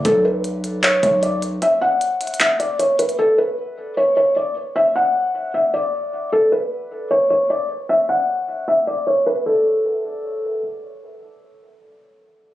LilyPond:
<<
  \new Staff \with { instrumentName = "Felt piano" } { \time 4/4 \key b \dorian \tempo 4 = 153 a'8 b'4. cis''8 cis''8 d''8 r8 | e''8 fis''4. e''8 d''8 cis''8 b'8 | a'8 b'4. cis''8 cis''8 d''8 r8 | e''8 fis''4. e''8 d''4. |
a'8 b'4. cis''8 cis''8 d''8 r8 | e''8 fis''4. e''8 d''8 cis''8 b'8 | a'2. r4 | r1 | }
  \new Staff \with { instrumentName = "808-style bass" } { \clef bass \time 4/4 \key b \dorian b,,2~ b,,8 b,,4. | r1 | r1 | r1 |
r1 | r1 | r1 | r1 | }
  \new DrumStaff \with { instrumentName = "Drums" } \drummode { \time 4/4 <hh bd>4 hh8 hh8 <hc hh>8 <hh bd>8 hh8 hh8 | hh4 \tuplet 3/2 { hh16 r16 r16 hh16 hh16 hh16 } <hc hh>8 hh8 hh8 hh16 hh16 | r4 r4 r4 r4 | r4 r4 r4 r4 |
r4 r4 r4 r4 | r4 r4 r4 r4 | r4 r4 r4 r4 | r4 r4 r4 r4 | }
>>